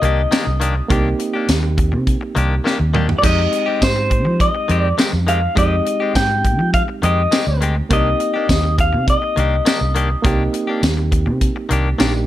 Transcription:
Already playing: reed electric piano A#3 C4 D#4 G4, clean electric guitar D#5
0.02 fingered electric bass C2, clean electric guitar D#3 A#3 D4 G4, closed hi-hat
0.31 clean electric guitar D#3 A#3 D4 G4, snare, closed hi-hat, tambourine
0.46 fingered electric bass C2, muted clean electric guitar stroke
0.60 clean electric guitar D#3 A#3 D4 G4, closed hi-hat
0.76 muted clean electric guitar stroke
0.88 fingered electric bass C2, clean electric guitar D#3 A#3 D4 G4, reed electric piano A#3 C4 D#4 G4, kick, closed hi-hat
1.19 muted clean electric guitar stroke, closed hi-hat
1.34 clean electric guitar A#3 D4 G4
1.48 fingered electric bass D#2, muted clean electric guitar stroke, snare, closed hi-hat, tambourine
1.63 muted clean electric guitar stroke
1.78 muted clean electric guitar stroke, kick, closed hi-hat
1.92 fingered electric bass C3, muted clean electric guitar stroke
2.07 kick, closed hi-hat
2.21 muted clean electric guitar stroke
2.35 fingered electric bass C2, clean electric guitar D#3 A#3 D4 G4, closed hi-hat
2.64 clean electric guitar D#3 A#3 D4 G4, snare
2.79 fingered electric bass D#2, muted clean electric guitar stroke
2.94 clean electric guitar D#3 A#3 D4 G4, mid tom
3.08 muted clean electric guitar stroke, floor tom
3.18 clean electric guitar D#3 D5, reed electric piano G#3
3.23 fingered electric bass F2, clean electric guitar G#3 C4 G4 D#5, reed electric piano C4 D#4 G4, kick, closed hi-hat, crash
3.52 muted clean electric guitar stroke, closed hi-hat
3.66 clean electric guitar G#3 C4 G4
3.81 fingered electric bass G#2, clean electric guitar C5, muted clean electric guitar stroke, kick, snare, closed hi-hat, tambourine
3.96 muted clean electric guitar stroke
4.10 muted clean electric guitar stroke, kick, closed hi-hat
4.25 fingered electric bass F3, muted clean electric guitar stroke
4.40 clean electric guitar D#5, kick, closed hi-hat
4.55 muted clean electric guitar stroke
4.68 fingered electric bass F2, clean electric guitar D#3 G#3 C4 G4, closed hi-hat
4.80 clean electric guitar D5
4.98 clean electric guitar D#3 G#3 C4 G4, snare, closed hi-hat, tambourine
5.12 fingered electric bass F2, muted clean electric guitar stroke
5.27 clean electric guitar D#3 G#3 C4 G4 F5, closed hi-hat
5.41 muted clean electric guitar stroke
5.55 fingered electric bass F2, clean electric guitar D#3 G#3 C4 G4 D#5, reed electric piano G#3 C4 D#4 G4, kick, closed hi-hat
5.85 muted clean electric guitar stroke, closed hi-hat
6.00 clean electric guitar G#3 C4 G4
6.15 fingered electric bass G#2, clean electric guitar G5, muted clean electric guitar stroke, kick, snare, closed hi-hat, tambourine
6.30 muted clean electric guitar stroke
6.45 muted clean electric guitar stroke, kick, closed hi-hat
6.59 fingered electric bass F3, muted clean electric guitar stroke
6.74 clean electric guitar F5, kick, closed hi-hat
6.88 muted clean electric guitar stroke
7.02 fingered electric bass F2, clean electric guitar D#3 G#3 C4 G4 D#5, closed hi-hat
7.32 clean electric guitar D#3 G#3 C4 G4, snare, closed hi-hat, tambourine
7.47 fingered electric bass D2, muted clean electric guitar stroke
7.61 clean electric guitar D#3 G#3 C4 G4, closed hi-hat
7.76 muted clean electric guitar stroke
7.89 fingered electric bass C2, clean electric guitar D#3 A#3 D4 G4, reed electric piano A#3 C4 D#4 G4, kick, closed hi-hat
7.93 clean electric guitar D#5
8.20 muted clean electric guitar stroke, closed hi-hat
8.34 clean electric guitar A#3 D4 G4
8.49 fingered electric bass D#2, muted clean electric guitar stroke, kick, snare, closed hi-hat, tambourine
8.63 muted clean electric guitar stroke
8.78 clean electric guitar F5, muted clean electric guitar stroke, kick, closed hi-hat
8.93 fingered electric bass C3, muted clean electric guitar stroke
9.08 clean electric guitar D#5, kick, closed hi-hat
9.22 muted clean electric guitar stroke
9.36 fingered electric bass C2, clean electric guitar D#3 A#3 D4 G4, closed hi-hat
9.65 clean electric guitar D#3 A#3 D4 G4, snare, closed hi-hat, tambourine
9.81 fingered electric bass C2
9.95 clean electric guitar D#3 A#3 D4 G4, closed hi-hat
10.10 muted clean electric guitar stroke
10.23 fingered electric bass C2, clean electric guitar D#3 A#3 D4 G4, reed electric piano A#3 C4 D#4 G4, kick, closed hi-hat
10.53 muted clean electric guitar stroke, closed hi-hat
10.67 clean electric guitar A#3 D4 G4
10.82 fingered electric bass D#2, muted clean electric guitar stroke, snare, closed hi-hat, tambourine
10.97 muted clean electric guitar stroke
11.12 muted clean electric guitar stroke, kick, closed hi-hat
11.26 fingered electric bass C3, muted clean electric guitar stroke
11.41 kick, closed hi-hat
11.56 muted clean electric guitar stroke
11.69 fingered electric bass C2, clean electric guitar D#3 A#3 D4 G4, closed hi-hat
11.98 fingered electric bass A#1, clean electric guitar D#3 A#3 D4 G4, reed electric piano A#3 D4 D#4 G4, snare, closed hi-hat, tambourine
12.14 muted clean electric guitar stroke

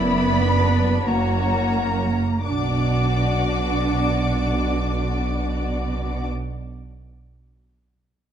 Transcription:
Already playing: double bass section F#1, cello section F#2, viola section B3, violin section E4 D5 B5
0.43 violin section D4
1.06 double bass section F#1, cello section F#2, viola section A#3, violin section F#4 C#5 A#5
2.44 double bass section B1, cello section B2, viola section D4, violin section F#4 D5 D6

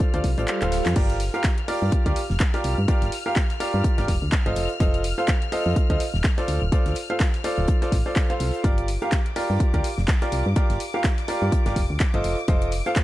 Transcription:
Already playing: grand piano F4 A4 C5 D5, string section F6
0.00 kick, closed hi-hat, swell
0.14 fm bass D2, grand piano F4 A4 C5 D5, closed hi-hat
0.24 fm bass C2, kick, closed hi-hat, open hi-hat
0.38 fm bass A1, grand piano F4 A4 C5 D5, closed hi-hat
0.48 clap, closed hi-hat
0.62 fm bass D1, grand piano F4 A4 C5 F5, clap, closed hi-hat
0.72 snare, closed hi-hat, open hi-hat
0.85 fm bass F2, snare, clap, closed hi-hat
0.96 fm bass G1, grand piano F4 G4 A#4 D5, string section F6, kick, closed hi-hat, crash
1.10 closed hi-hat
1.20 closed hi-hat, open hi-hat
1.34 grand piano F4 G4 A#4 F5, closed hi-hat
1.44 kick, snare, clap, closed hi-hat
1.58 closed hi-hat
1.68 grand piano F4 G4 A#4 D5, open hi-hat
1.82 fm bass G2
1.92 kick, closed hi-hat
2.06 fm bass D2, grand piano F4 G4 A#4 D5, kick, closed hi-hat
2.16 closed hi-hat, open hi-hat
2.30 fm bass F1, snare
2.40 kick, snare, clap, closed hi-hat
2.54 grand piano F4 G4 A#4 D5, snare, closed hi-hat
2.64 fm bass C2, closed hi-hat, open hi-hat
2.78 fm bass G2
2.88 grand piano F4 G4 A#4 D5, kick, closed hi-hat
3.02 fm bass G1, snare, closed hi-hat
3.12 closed hi-hat, open hi-hat
3.26 grand piano F4 G4 A#4 F5
3.36 kick, snare, clap, closed hi-hat
3.50 snare, closed hi-hat
3.60 grand piano F4 G4 A#4 D5, snare, closed hi-hat, open hi-hat
3.74 fm bass G2
3.84 kick, closed hi-hat
3.98 fm bass G1, grand piano F4 G4 A#4 D5, snare, closed hi-hat
4.08 fm bass F1, kick, snare, closed hi-hat, open hi-hat
4.22 fm bass D2
4.32 kick, snare, clap, closed hi-hat
4.46 fm bass G1, grand piano F4 A4 C5 D#5, closed hi-hat
4.56 fm bass F1, closed hi-hat, open hi-hat
4.69 closed hi-hat
4.80 fm bass F1, grand piano F4 A4 C5 D#5, kick, closed hi-hat
4.94 closed hi-hat
5.04 closed hi-hat, open hi-hat
5.18 grand piano F4 A4 C5 F5, closed hi-hat
5.28 kick, snare, clap, closed hi-hat
5.42 closed hi-hat
5.52 grand piano F4 A4 C5 D#5, open hi-hat
5.66 fm bass F2
5.76 kick, closed hi-hat
5.90 fm bass D2, grand piano F4 A4 C5 D#5, kick, closed hi-hat
6.00 closed hi-hat, open hi-hat
6.14 fm bass D#1, snare
6.24 kick, snare, clap, closed hi-hat
6.37 grand piano F4 A4 C5 D5, snare, closed hi-hat
6.48 fm bass D2, closed hi-hat, open hi-hat
6.62 fm bass D1
6.72 grand piano F4 A4 C5 D5, kick, closed hi-hat
6.86 fm bass D2, snare, closed hi-hat
6.95 closed hi-hat, open hi-hat
7.10 grand piano F4 A4 C5 F5, closed hi-hat
7.20 kick, snare, clap, closed hi-hat
7.34 snare, closed hi-hat
7.44 grand piano F4 A4 C5 D5, snare, closed hi-hat, open hi-hat
7.58 fm bass D1
7.68 kick, closed hi-hat
7.82 grand piano F4 A4 C5 D5, snare, closed hi-hat
7.92 fm bass A1, kick, snare, closed hi-hat, open hi-hat
8.06 grand piano F4 A4 C5 D5
8.16 kick, snare, clap, closed hi-hat
8.30 grand piano F4 A4 C5 F5, closed hi-hat
8.40 fm bass C2, closed hi-hat, open hi-hat
8.54 closed hi-hat
8.64 fm bass G1, grand piano F4 G4 A#4 D5, string section D6, kick, closed hi-hat
8.78 closed hi-hat
8.88 closed hi-hat, open hi-hat
9.02 grand piano F4 G4 A#4 F5, closed hi-hat
9.11 kick, snare, clap, closed hi-hat
9.26 closed hi-hat
9.36 grand piano F4 G4 A#4 D5, open hi-hat
9.50 fm bass G2
9.60 kick, closed hi-hat
9.74 fm bass D2, grand piano F4 G4 A#4 D5, kick, closed hi-hat
9.84 closed hi-hat, open hi-hat
9.98 fm bass F1, snare
10.08 kick, snare, clap, closed hi-hat
10.21 grand piano F4 G4 A#4 D5, snare, closed hi-hat
10.32 fm bass C2, closed hi-hat, open hi-hat
10.46 fm bass G2
10.56 grand piano F4 G4 A#4 D5, kick, closed hi-hat
10.70 fm bass G1, snare, closed hi-hat
10.80 closed hi-hat, open hi-hat
10.94 grand piano F4 G4 A#4 F5
11.04 kick, snare, clap, closed hi-hat
11.18 snare, closed hi-hat
11.28 grand piano F4 G4 A#4 D5, snare, closed hi-hat, open hi-hat
11.42 fm bass G2
11.52 kick, closed hi-hat
11.66 fm bass G1, grand piano F4 G4 A#4 D5, snare, closed hi-hat
11.76 fm bass F1, kick, snare, closed hi-hat, open hi-hat
11.90 fm bass D2
12.00 kick, snare, clap, closed hi-hat
12.14 fm bass G1, grand piano F4 A4 C5 D#5, closed hi-hat
12.24 fm bass F1, closed hi-hat, open hi-hat
12.39 closed hi-hat
12.48 fm bass F1, grand piano F4 A4 C5 D#5, kick, closed hi-hat
12.61 closed hi-hat
12.72 closed hi-hat, open hi-hat
12.86 grand piano F4 A4 C5 F5, closed hi-hat
12.96 kick, snare, clap, closed hi-hat

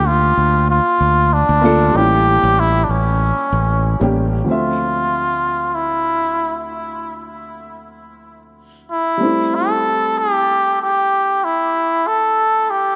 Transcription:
Already playing: fingered electric bass D2, grand piano A#3 D4 F4 A4
0.07 muted trumpet F4
0.37 fingered electric bass D2
0.70 muted trumpet F4
1.01 fingered electric bass D2
1.33 muted trumpet D4
1.49 fingered electric bass D2
1.61 grand piano A#3 D4 F4 A4
1.91 fingered electric bass A1, grand piano G3 A#3
1.96 grand piano C#4 E4, muted trumpet G4
2.43 fingered electric bass A1
2.60 muted trumpet E4
2.84 muted trumpet D4
2.89 fingered electric bass A1, muted trumpet C#4
3.52 fingered electric bass A1
4.00 fingered electric bass A1, grand piano G3 A#3 C#4 G4
4.44 grand piano D2 F3 A3
4.49 grand piano C4 E5, muted trumpet F4
5.75 muted trumpet E4
8.91 muted trumpet E4
9.18 grand piano G3 A3
9.22 grand piano C4 E4
9.55 muted trumpet A4
10.18 muted trumpet G4
10.82 muted trumpet G4
11.44 muted trumpet E4
12.07 muted trumpet A4
12.70 muted trumpet G4

